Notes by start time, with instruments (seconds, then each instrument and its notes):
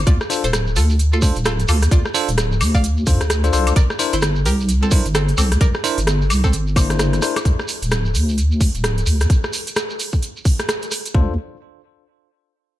0.06 wobble bass D2, synth pluck F4 D5, kick, closed hi-hat, shekere
0.21 cross-stick, shekere
0.30 tine electric piano D4 F4 A4 C5, open hi-hat, shekere
0.44 wobble bass D1, synth pluck A4 C5, closed hi-hat, shekere
0.53 cross-stick, closed hi-hat, shekere
0.67 shekere
0.76 wobble bass D2, synth pluck F4 A4, open hi-hat, shekere
0.90 shekere
0.99 closed hi-hat, shekere
1.12 synth pluck F4 A4, shekere
1.22 tine electric piano D4 F4 A4 C5, kick, open hi-hat, shekere
1.35 wobble bass D1, closed hi-hat, shekere
1.45 synth pluck F4 A4, cross-stick, closed hi-hat, shekere
1.59 closed hi-hat, shekere
1.68 wobble bass D2, synth pluck F4 A4, open hi-hat, high woodblock, shekere
1.82 cross-stick, closed hi-hat, shekere
1.91 wobble bass D2, synth pluck F4 D5, kick, closed hi-hat, shekere
2.05 cross-stick, shekere
2.14 tine electric piano D4 F4 A4 C5, open hi-hat, shekere
2.28 wobble bass D1, closed hi-hat, shekere
2.38 cross-stick, closed hi-hat, shekere
2.52 shekere
2.61 wobble bass D2, open hi-hat, high woodblock, shekere
2.75 synth pluck D5 F5, kick, shekere
2.84 closed hi-hat, shekere
2.97 shekere
3.06 wobble bass F2, tine electric piano D4 F4 A4 C5, kick, open hi-hat, shekere
3.21 wobble bass D2, cross-stick, closed hi-hat, shekere
3.30 cross-stick, closed hi-hat, shekere
3.44 tine electric piano D4 F4 A4 C5, closed hi-hat, shekere
3.53 wobble bass C2, tine electric piano D4 F4 A4 C5, cross-stick, open hi-hat, shekere
3.67 closed hi-hat, high woodblock, shekere
3.76 wobble bass C2, synth pluck A#4 D5, kick, closed hi-hat, shekere
3.90 cross-stick, shekere
3.99 tine electric piano D4 E4 A#4 C5, open hi-hat, shekere
4.13 wobble bass G1, synth pluck E4 C5, closed hi-hat, shekere
4.21 cross-stick, closed hi-hat, shekere
4.36 shekere
4.45 wobble bass C2, synth pluck G4 A#4, open hi-hat, shekere
4.60 shekere
4.69 closed hi-hat, shekere
4.83 synth pluck C4 A4, shekere
4.91 tine electric piano D4 E4 A#4 C5, kick, open hi-hat, shekere
5.05 wobble bass G1, closed hi-hat, shekere
5.15 synth pluck C4 A4, cross-stick, closed hi-hat, shekere
5.28 closed hi-hat, shekere
5.37 wobble bass C2, synth pluck C4 A4, open hi-hat, high woodblock, shekere
5.52 cross-stick, closed hi-hat, shekere
5.61 wobble bass C2, synth pluck A#4 D5, kick, closed hi-hat, shekere
5.74 cross-stick, shekere
5.84 tine electric piano D4 E4 A#4 C5, open hi-hat, shekere
5.98 wobble bass G1, closed hi-hat, shekere
6.07 cross-stick, closed hi-hat, shekere
6.21 shekere
6.30 wobble bass C2, open hi-hat, high woodblock, shekere
6.44 synth pluck C4 A4, kick, shekere
6.52 wobble bass G1, closed hi-hat, shekere
6.67 shekere
6.76 tine electric piano A#3 D4 E4 C5, kick, open hi-hat, high woodblock, shekere
6.90 cross-stick, closed hi-hat, shekere
6.99 cross-stick, closed hi-hat, shekere
7.13 cross-stick, closed hi-hat, shekere
7.22 tine electric piano D4 E4 A#4 C5, cross-stick, open hi-hat, shekere
7.36 cross-stick, closed hi-hat, high woodblock, shekere
7.45 wobble bass D2, kick, closed hi-hat, shekere
7.59 cross-stick, shekere
7.68 open hi-hat, shekere
7.82 wobble bass D1, closed hi-hat, shekere
7.91 cross-stick, closed hi-hat, shekere
8.05 shekere
8.15 wobble bass D2, open hi-hat, shekere
8.29 shekere
8.38 closed hi-hat, shekere
8.51 shekere
8.61 kick, open hi-hat, shekere
8.75 wobble bass D1, closed hi-hat, shekere
8.84 cross-stick, closed hi-hat, shekere
8.98 closed hi-hat, shekere
9.06 wobble bass D2, open hi-hat, shekere
9.20 cross-stick, closed hi-hat, shekere
9.30 kick, closed hi-hat, shekere
9.44 cross-stick, shekere
9.53 open hi-hat, shekere
9.67 closed hi-hat, shekere
9.76 cross-stick, closed hi-hat, shekere
9.90 shekere
9.99 open hi-hat, shekere
10.12 kick, shekere
10.22 closed hi-hat, shekere
10.36 shekere
10.45 kick, open hi-hat, shekere
10.59 cross-stick, closed hi-hat, shekere
10.69 cross-stick, closed hi-hat, shekere
10.82 closed hi-hat, shekere
10.91 cross-stick, open hi-hat, shekere
11.05 closed hi-hat, shekere
11.14 wobble bass D2, tine electric piano D4 F4 A4 C5, kick